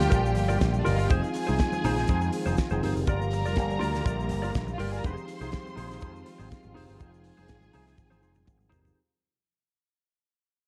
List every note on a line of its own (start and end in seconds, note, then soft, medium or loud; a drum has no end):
0.00 1.08 D3 medium
0.00 1.08 F3 medium
0.00 0.84 G3 medium
0.00 1.09 G3 medium
0.00 1.09 A#3 medium
0.00 5.01 F4 medium
0.00 0.71 G4 loud
0.00 0.85 G4 medium
0.00 0.86 A#4 medium
0.00 0.10 D5 soft
0.00 0.86 D5 medium
0.00 0.87 F5 loud
0.00 0.71 G5 loud
0.00 snare soft
0.00 shaker medium
0.09 0.37 A#1 loud
0.09 0.30 F4 loud
0.09 0.22 A#4 loud
0.09 0.21 D5 medium
0.09 kick loud
0.09 closed hi-hat medium
0.09 muted conga soft
0.09 shaker medium
0.22 muted clean electric guitar stroke medium
0.22 muted conga soft
0.22 shaker medium
0.34 0.56 G1 loud
0.34 muted clean electric guitar stroke soft
0.34 open hi-hat medium
0.34 shaker medium
0.48 0.58 F4 medium
0.48 0.59 A#4 medium
0.48 0.60 D5 medium
0.48 high conga medium
0.48 shaker medium
0.59 0.81 A#1 loud
0.59 muted clean electric guitar stroke soft
0.59 kick loud
0.59 snare loud
0.59 closed hi-hat medium
0.59 muted conga soft
0.59 shaker medium
0.73 muted clean electric guitar stroke soft
0.73 high conga medium
0.73 shaker medium
0.79 0.86 D4 medium
0.79 0.87 D5 medium
0.84 1.06 G1 medium
0.84 1.07 G3 medium
0.84 0.94 D#4 medium
0.84 0.99 F4 medium
0.84 1.07 G4 medium
0.84 0.98 A#4 medium
0.84 1.08 A#4 medium
0.84 1.08 D5 medium
0.84 0.97 D5 medium
0.84 0.94 D#5 medium
0.84 1.08 F5 medium
0.84 open hi-hat medium
0.84 low conga medium
0.84 shaker medium
0.95 1.03 F4 medium
0.95 1.10 A#4 medium
0.95 1.10 D5 medium
0.95 1.03 F5 medium
0.95 shaker medium
1.00 1.09 F4 medium
1.04 1.12 G4 medium
1.04 1.12 G5 medium
1.09 1.21 F1 loud
1.09 3.05 D#3 medium
1.09 8.93 F3 medium
1.09 1.54 F3 medium
1.09 3.05 G#3 medium
1.09 3.05 C4 medium
1.09 1.54 C4 medium
1.09 1.29 D#4 medium
1.09 1.54 D#4 medium
1.09 1.55 F4 medium
1.09 1.24 G#4 medium
1.09 2.80 G#4 medium
1.09 1.22 C5 loud
1.09 2.80 G#5 medium
1.09 kick loud
1.09 closed hi-hat medium
1.09 low conga medium
1.09 shaker medium
1.23 muted clean electric guitar stroke soft
1.23 muted conga soft
1.23 shaker medium
1.34 muted clean electric guitar stroke soft
1.34 open hi-hat medium
1.34 shaker medium
1.47 1.58 C2 medium
1.47 1.59 D#4 soft
1.47 1.60 G#4 medium
1.47 1.60 C5 medium
1.47 high conga medium
1.47 shaker medium
1.58 2.46 F3 medium
1.58 2.46 C4 medium
1.58 2.46 D#4 medium
1.58 2.46 F4 medium
1.58 2.47 G#4 medium
1.58 muted clean electric guitar stroke soft
1.58 kick loud
1.58 snare loud
1.58 closed hi-hat medium
1.58 muted conga soft
1.58 high conga medium
1.58 shaker medium
1.72 muted clean electric guitar stroke medium
1.72 muted conga soft
1.72 high conga medium
1.72 shaker medium
1.84 2.04 A#1 medium
1.84 1.98 D#4 loud
1.84 1.97 G#4 loud
1.84 1.96 C5 loud
1.84 open hi-hat medium
1.84 low conga medium
1.84 shaker medium
1.97 2.08 D#4 soft
1.97 2.08 G#4 medium
1.97 2.09 C5 medium
1.97 snare soft
1.97 shaker medium
2.07 2.29 F2 loud
2.07 2.28 D#4 medium
2.07 2.22 G#4 loud
2.07 2.20 C5 loud
2.07 kick loud
2.07 closed hi-hat medium
2.07 muted conga soft
2.07 shaker medium
2.21 muted clean electric guitar stroke soft
2.21 shaker medium
2.32 muted clean electric guitar stroke soft
2.32 open hi-hat medium
2.32 shaker medium
2.46 2.56 F1 medium
2.46 2.57 D#4 medium
2.46 2.57 G#4 medium
2.46 2.58 C5 medium
2.46 high conga medium
2.46 shaker medium
2.57 kick loud
2.57 snare loud
2.57 closed hi-hat medium
2.57 shaker medium
2.70 2.80 F1 medium
2.70 2.82 D#4 medium
2.70 2.83 G#4 medium
2.70 2.84 C5 medium
2.70 high conga medium
2.70 shaker medium
2.81 2.93 G1 medium
2.81 3.04 F3 medium
2.81 3.04 C4 medium
2.81 3.05 D#4 medium
2.81 2.98 D#4 medium
2.81 3.05 G4 medium
2.81 2.95 G#4 medium
2.81 3.05 A#4 medium
2.81 2.95 C5 medium
2.81 open hi-hat medium
2.81 low conga medium
2.95 3.05 F1 medium
2.95 muted clean electric guitar stroke soft
2.95 shaker medium
3.06 3.45 G1 loud
3.06 5.03 D3 medium
3.06 3.51 G3 medium
3.06 5.03 G3 medium
3.06 5.03 A#3 medium
3.06 3.27 F4 medium
3.06 3.51 G4 medium
3.06 4.64 A#4 loud
3.06 3.51 A#4 medium
3.06 3.22 A#4 loud
3.06 3.51 D5 medium
3.06 3.21 D5 loud
3.06 3.52 F5 loud
3.06 4.64 A#5 loud
3.06 kick loud
3.06 closed hi-hat medium
3.06 low conga medium
3.06 shaker medium
3.20 muted clean electric guitar stroke medium
3.20 muted conga soft
3.20 shaker soft
3.31 muted clean electric guitar stroke medium
3.31 open hi-hat medium
3.31 shaker medium
3.44 3.57 F1 medium
3.44 3.56 F4 soft
3.44 3.56 A#4 medium
3.44 3.57 D5 medium
3.44 high conga medium
3.44 shaker medium
3.56 3.76 G1 medium
3.56 4.43 G3 loud
3.56 4.44 G4 medium
3.56 4.44 A#4 medium
3.56 4.44 D5 medium
3.56 4.44 F5 loud
3.56 muted clean electric guitar stroke medium
3.56 kick loud
3.56 snare medium
3.56 closed hi-hat medium
3.56 high conga medium
3.56 shaker medium
3.68 muted clean electric guitar stroke soft
3.68 high conga medium
3.68 shaker medium
3.79 4.00 D2 loud
3.79 3.93 F4 medium
3.79 3.93 A#4 medium
3.79 3.91 D5 loud
3.79 open hi-hat medium
3.79 low conga medium
3.79 shaker medium
3.92 4.03 F4 medium
3.92 4.05 A#4 medium
3.92 4.04 D5 medium
3.92 snare soft
3.92 shaker medium
4.04 4.31 A#1 loud
4.04 4.24 F4 medium
4.04 4.18 A#4 medium
4.04 4.17 D5 loud
4.04 kick loud
4.04 closed hi-hat medium
4.04 shaker loud
4.18 muted clean electric guitar stroke medium
4.18 shaker medium
4.29 4.49 G1 loud
4.29 muted clean electric guitar stroke medium
4.29 open hi-hat medium
4.29 shaker medium
4.42 4.51 F4 medium
4.42 4.52 A#4 medium
4.42 4.53 D5 medium
4.42 high conga medium
4.42 shaker soft
4.53 4.75 A#1 loud
4.53 muted clean electric guitar stroke soft
4.53 kick loud
4.53 snare loud
4.53 closed hi-hat medium
4.53 shaker medium
4.67 muted clean electric guitar stroke soft
4.67 muted conga soft
4.67 high conga medium
4.67 shaker medium
4.71 4.80 F4 medium
4.71 4.80 F5 medium
4.78 4.99 G1 medium
4.78 5.01 G3 medium
4.78 4.93 F4 medium
4.78 5.01 G4 medium
4.78 4.88 G4 medium
4.78 4.93 A#4 loud
4.78 5.02 A#4 medium
4.78 5.02 D5 medium
4.78 4.92 D5 loud
4.78 5.02 F5 medium
4.78 4.88 G5 medium
4.78 open hi-hat medium
4.78 low conga medium
4.89 4.97 G#4 medium
4.89 4.97 G#5 loud
4.93 5.04 F4 medium
4.93 5.05 A#4 medium
4.93 5.06 D5 medium
4.93 5.05 A#5 loud
4.93 shaker medium
4.97 5.05 A#4 medium
5.02 5.15 F1 loud
5.02 8.94 D#3 medium
5.02 5.47 F3 medium
5.02 6.99 G#3 medium
5.02 5.47 C4 medium
5.02 8.94 C4 medium
5.02 5.47 D#4 medium
5.02 5.25 D#4 medium
5.02 8.94 F4 medium
5.02 5.48 G4 medium
5.02 5.48 G#4 loud
5.02 5.17 G#4 medium
5.02 6.74 C5 medium
5.02 5.16 C5 loud
5.02 6.74 C6 loud
5.02 kick loud
5.02 closed hi-hat medium
5.02 muted conga soft
5.02 low conga medium
5.02 shaker medium
5.17 muted clean electric guitar stroke soft
5.17 shaker medium
5.28 muted clean electric guitar stroke soft
5.28 open hi-hat medium
5.28 shaker medium
5.41 5.51 C2 medium
5.41 5.51 D#4 medium
5.41 5.52 G#4 medium
5.41 5.53 C5 medium
5.41 high conga medium
5.41 shaker medium
5.52 6.39 F3 medium
5.52 6.40 C4 medium
5.52 6.40 D#4 medium
5.52 6.40 G4 medium
5.52 6.40 G#4 medium
5.52 kick loud
5.52 snare loud
5.52 closed hi-hat medium
5.52 muted conga soft
5.52 high conga medium
5.52 shaker medium
5.66 muted clean electric guitar stroke medium
5.66 muted conga soft
5.66 high conga medium
5.66 shaker medium
5.76 5.97 A#1 loud
5.76 5.90 D#4 medium
5.76 5.89 G#4 medium
5.76 5.88 C5 loud
5.76 open hi-hat medium
5.76 low conga medium
5.76 shaker medium
5.89 5.99 D#4 medium
5.89 6.01 G#4 medium
5.89 6.02 C5 medium
5.89 snare soft
5.89 shaker medium
6.01 6.22 F2 loud
6.01 6.21 D#4 medium
6.01 6.15 G#4 loud
6.01 6.13 C5 loud
6.01 kick loud
6.01 closed hi-hat medium
6.01 muted conga soft
6.01 shaker loud
6.14 muted clean electric guitar stroke soft
6.14 shaker medium
6.26 muted clean electric guitar stroke soft
6.26 open hi-hat medium
6.26 shaker medium
6.38 6.49 G#1 loud
6.38 6.50 D#4 medium
6.38 6.50 G#4 medium
6.38 6.51 C5 medium
6.38 high conga medium
6.38 shaker medium
6.51 kick loud
6.51 snare loud
6.51 closed hi-hat medium
6.51 muted conga soft
6.51 shaker medium
6.63 6.74 G#1 medium
6.63 muted clean electric guitar stroke soft
6.63 muted conga soft
6.63 high conga medium
6.63 shaker soft
6.74 6.87 F1 medium
6.74 6.97 F3 medium
6.74 6.97 C4 medium
6.74 6.87 D#4 medium
6.74 6.97 D#4 medium
6.74 6.98 G4 medium
6.74 6.87 G#4 loud
6.74 6.98 G#4 medium
6.74 6.85 C5 loud
6.74 open hi-hat medium
6.74 low conga medium
6.86 6.98 G1 medium
6.86 6.98 D#4 medium
6.86 6.98 G#4 medium
6.86 6.99 C5 medium
6.86 shaker medium
6.99 7.30 F1 loud
6.99 7.44 F3 medium
6.99 8.95 G#3 medium
6.99 7.44 C4 medium
6.99 7.19 D#4 medium
6.99 7.44 D#4 medium
6.99 7.44 F4 medium
6.99 7.13 G#4 medium
6.99 7.44 G#4 medium
6.99 8.70 G#4 loud
6.99 7.12 C5 loud
6.99 8.70 G#5 loud
6.99 kick loud
6.99 low conga medium
6.99 shaker medium
7.13 muted clean electric guitar stroke soft
7.13 muted conga soft
7.13 shaker medium
7.24 muted clean electric guitar stroke soft
7.24 open hi-hat medium
7.24 shaker medium
7.37 7.48 F1 medium
7.37 7.48 D#4 soft
7.37 7.48 G#4 medium
7.37 7.49 C5 medium
7.37 high conga medium
7.37 shaker medium
7.48 7.69 G#1 medium
7.48 8.36 F3 medium
7.48 8.36 C4 medium
7.48 8.36 D#4 medium
7.48 8.36 F4 medium
7.48 8.37 G#4 medium
7.48 kick loud
7.48 snare loud
7.48 closed hi-hat medium
7.48 muted conga soft
7.48 high conga medium
7.48 shaker medium
7.61 muted clean electric guitar stroke soft
7.61 muted conga soft
7.61 high conga medium
7.61 shaker medium
7.73 7.94 C2 medium
7.73 7.87 D#4 medium
7.73 7.86 G#4 loud
7.73 7.85 C5 loud
7.73 open hi-hat medium
7.73 low conga medium
7.73 shaker medium
7.86 7.96 D#4 medium
7.86 7.97 G#4 medium
7.86 7.98 C5 medium
7.86 snare soft
7.86 shaker medium
7.97 8.24 G#1 loud
7.97 muted clean electric guitar stroke soft
7.97 kick loud
7.97 high tom medium
7.97 muted conga soft
7.97 shaker medium
8.10 8.20 D#4 medium
8.10 8.22 G#4 loud
8.10 8.22 C5 loud
8.10 high tom medium
8.10 muted conga soft
8.10 shaker medium
8.21 8.43 F1 loud
8.21 8.38 D#4 medium
8.21 8.34 G#4 medium
8.21 8.33 C5 medium
8.21 shaker medium
8.35 muted clean electric guitar stroke soft
8.35 mid tom medium
8.35 high conga medium
8.35 shaker soft
8.45 8.72 G#1 loud
8.45 muted clean electric guitar stroke soft
8.45 kick loud
8.45 mid tom loud
8.45 shaker medium
8.58 muted clean electric guitar stroke soft
8.58 muted conga soft
8.58 high conga medium
8.58 shaker soft
8.69 8.92 G1 medium
8.69 8.94 F3 medium
8.69 8.94 C4 medium
8.69 8.83 D#4 loud
8.69 8.94 D#4 medium
8.69 8.95 G4 medium
8.69 8.81 G#4 loud
8.69 8.95 A#4 medium
8.69 8.80 C5 loud
8.69 floor tom loud
8.69 low conga medium
8.69 shaker medium
8.82 8.99 D#4 soft
8.82 8.98 G#4 medium
8.82 8.98 C5 medium
8.82 floor tom loud
8.86 shaker medium